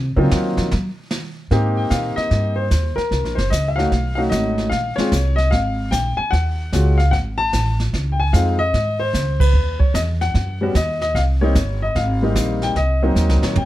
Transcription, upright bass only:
Already playing: C3
0.17 C#3
0.32 D#3
0.57 F3
0.72 F#3
1.51 G#2
1.91 A#2
2.17 muted upright bass stroke
2.31 G2
2.71 D#2
2.97 muted upright bass stroke
3.11 C2
3.24 A#1
3.38 F#1
3.52 C#2
3.92 B1
4.31 G#1
4.71 A#1
4.98 muted upright bass stroke
5.12 C2
5.52 G#1
5.92 A#1
6.19 muted upright bass stroke
6.32 D#2
6.73 C#2
7.12 G#1
7.53 A1
7.93 C#2
8.33 F2
8.73 G#2
9.14 C#2
9.53 D#2
9.94 E2
10.34 F#2
10.75 D#2
11.15 C2
11.55 G1
11.95 G#1
12.35 A#1
12.76 C2
13.15 D#2
13.29 C2
13.42 A#1
13.56 F2

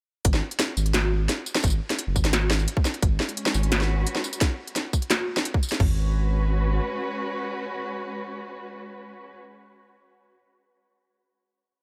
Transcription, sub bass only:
0.25 G#1
0.77 G#1
1.64 G#1
2.07 F#1
2.16 G#1
3.03 G#1
3.55 G#1
5.80 G#1

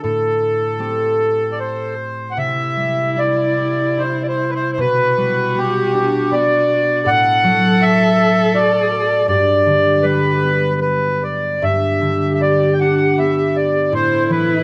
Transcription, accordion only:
0.03 A4
1.52 D5
1.60 C5
2.31 F#5
2.38 E5
3.19 D5
3.99 C5
4.23 D5
4.28 C5
4.50 B4
4.55 C5
4.72 C5
4.80 B4
5.58 G4
6.32 D5
7.08 F#5
7.82 E5
8.55 D5
9.28 D5
10.03 B4
10.81 B4
11.23 D5
11.63 E5
12.34 E5
12.41 D5
12.73 G5
12.80 F#5
13.19 E5
13.56 D5
13.94 C5
14.31 B4

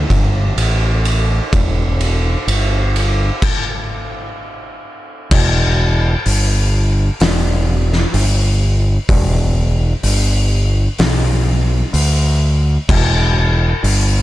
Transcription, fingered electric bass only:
0.10 G1
0.56 A1
1.53 E1
2.47 G1
5.31 E1
6.26 G1
7.21 E1
8.14 G1
9.09 E1
10.03 G1
10.99 B1
11.93 D2
12.89 E1
13.83 G1

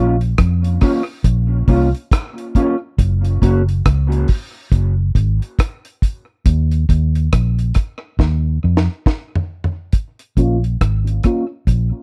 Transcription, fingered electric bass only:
Already playing: A#1
0.39 F2
1.25 A#1
1.68 C2
2.99 F#1
3.42 F#1
3.86 C#2
4.72 F#1
5.15 G#1
6.46 D#2
6.89 D#2
7.33 A#1
8.19 D#2
8.64 F2
10.37 A#1
10.81 G#1
11.67 A#1

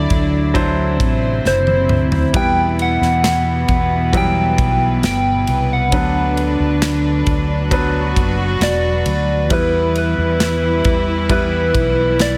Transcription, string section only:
Already playing: F#3 E4 D5
0.56 C5
2.34 E3 B4
5.92 F#3 D4
9.51 G3 E4

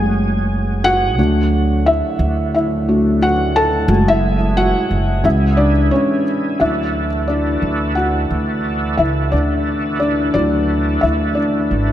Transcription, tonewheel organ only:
Already playing: F#3 G#4
1.19 D3
3.90 G#4
5.25 E3 E4
6.61 E3 D4 E4 F#4 A4

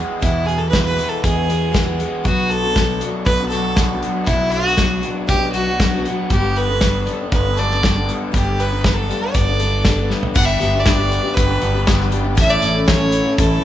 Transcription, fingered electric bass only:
0.23 E2
1.24 E2
2.25 B1
3.26 B1
4.27 B1
5.29 B1
6.30 G1
7.32 G1
8.34 G1
9.35 G1
10.36 G1
10.61 G1
11.37 G1
11.63 G1
12.38 A1
12.64 A1
13.39 A1

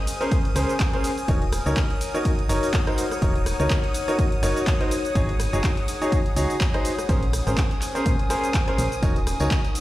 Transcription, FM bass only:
0.56 C#2
1.28 D#1
1.66 C#2
2.49 F#1
3.22 D#1
3.60 C#2
4.43 F#1
5.15 G#1
5.53 F#1
6.36 C#2
7.09 A#1
7.47 G#1
8.06 A#2
8.78 A#1
9.03 D#1
9.40 C#2

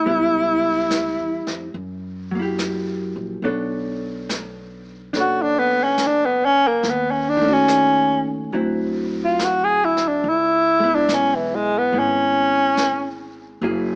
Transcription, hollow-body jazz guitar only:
0.06 G3 B3 E4
2.31 F#3 A#3
2.39 E4 G4
3.44 B3 D4 A4 C#5
5.13 D4 A4 C#5
7.37 D#3
7.41 A3 C#4
7.48 F#4
8.53 D3 F#3 C4 E4
10.80 G#3 B3
10.85 E4
11.93 G#3 B3 E4
13.63 F#3 A#3 E4 G#4

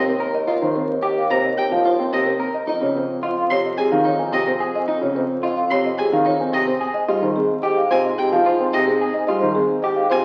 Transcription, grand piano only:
Already playing: C3
0.07 C4
0.62 D#3
0.76 C4
1.30 C3
1.58 C3
1.71 F3
1.99 C4
2.13 C3
2.26 C4
2.81 C#3
2.95 C4
3.50 C3
3.78 C3
3.92 D#3
4.19 C4
4.32 C3
4.46 C4
5.01 C#3
5.15 C4
5.70 C3
5.98 C3
6.12 D#3
6.40 C4
6.53 C3
6.67 C4
7.09 G3
7.22 D#3
7.36 C4
7.91 C3
8.18 C3
8.32 F3
8.60 C4
8.74 C3
8.88 C4
9.28 G3
9.42 D#3
9.56 C4
10.11 C3

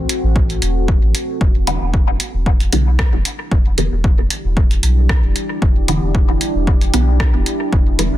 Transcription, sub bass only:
0.24 A1
0.62 E1
1.03 A1
1.41 E1
1.81 E1
2.34 E1
2.73 B1
3.13 E1
3.51 E1
3.92 E1
4.45 E1
4.83 B1
5.24 E1
5.62 E1
6.02 E1
6.55 E1
6.94 B1
7.34 E1
7.73 E1
8.13 E1

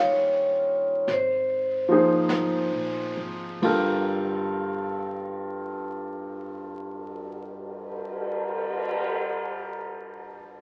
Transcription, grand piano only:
Already playing: G3 C#4 D#4 F4 A#4
1.88 F3 A#3 D#4 G#4
1.94 C5
3.62 G2 G3 F4 A4 A#4

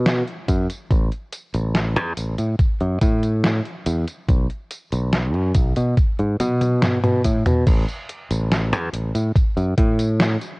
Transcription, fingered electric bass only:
Already playing: B2
0.48 F#2
0.90 A1
1.54 A1
1.96 E2
2.17 A1
2.39 A2
2.81 F#2
3.02 A2
3.86 E2
4.29 B1
4.93 B1
5.35 F#2
5.55 B1
5.77 B2
6.19 G#2
6.40 B2
7.03 B2
7.24 A2
7.46 B2
7.67 A1
8.30 A1
8.72 E2
8.93 A1
9.15 A2
9.57 F#2
9.78 A2

